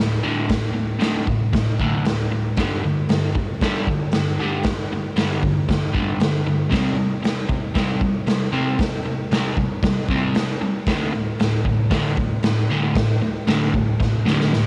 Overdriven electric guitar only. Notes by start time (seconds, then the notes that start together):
Already playing: D2 A2
0.23 D2 A2 D3
0.49 D2 A2
0.73 D2 A2
0.99 D2 A2 D3
1.27 D2 A2
1.53 D2 A2
1.80 D2 A2 D3
2.05 D2 A2
2.32 D2 A2
2.58 G2 D3 G3
2.84 G2 D3
3.09 G2 D3
3.35 G2 D3
3.62 G2 D3 G3
3.88 G2 D3
4.14 G2 D3
4.39 G2 D3 G3
4.65 G2 D3
4.92 G2 D3
5.16 G2 D3 G3
5.42 G2 D3
5.69 G2 D3
5.93 G2 D3 G3
6.20 G2 D3
6.47 G2 D3
6.70 C3 G3 C4
6.96 C3 G3
7.23 C3 G3
7.49 C3 G3
7.74 C3 G3 C4
8.01 C3 G3
8.27 C3 G3
8.52 C3 G3 C4
8.79 C3 G3
9.06 C3 G3
9.32 C3 G3 C4
9.57 C3 G3
9.83 C3 G3
10.10 C3 G3 C4
10.36 C3 G3
10.62 C3 G3
10.88 D2 A2 D3
11.13 D2 A2
11.40 D2 A2
11.65 D2 A2
11.90 D2 A2 D3
12.17 D2 A2
12.43 D2 A2
12.69 D2 A2 D3
12.96 D2 A2
13.22 D2 A2
13.47 D2 A2 D3
13.73 D2 A2
14.00 D2 A2
14.25 D2 A2 D3
14.53 D2 A2